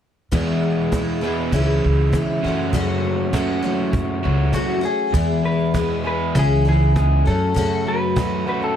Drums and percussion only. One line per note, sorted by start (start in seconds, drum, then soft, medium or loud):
0.32 cajon bass medium
0.62 cajon slap soft
0.92 cajon bass medium
0.92 cajon slap medium
1.22 cajon slap soft
1.52 cajon bass medium
1.83 cajon slap soft
2.13 cajon bass medium
2.13 cajon slap medium
2.43 cajon slap soft
2.73 cajon bass medium
3.04 cajon slap soft
3.33 cajon bass medium
3.33 cajon slap medium
3.63 cajon slap soft
3.93 cajon bass medium
4.23 cajon slap soft
4.53 cajon bass medium
4.53 cajon slap medium
4.83 cajon slap soft
5.14 cajon bass medium
5.30 cajon slap soft
5.44 cajon slap soft
5.59 cajon slap soft
5.74 cajon bass medium
5.74 cajon slap medium
6.04 cajon slap soft
6.35 cajon bass medium
6.65 cajon slap soft
6.96 cajon bass medium
6.96 cajon slap medium
7.26 cajon slap soft
7.56 cajon bass medium
7.86 cajon slap soft
8.17 cajon bass medium
8.17 cajon slap medium
8.47 cajon slap soft
8.61 cajon slap soft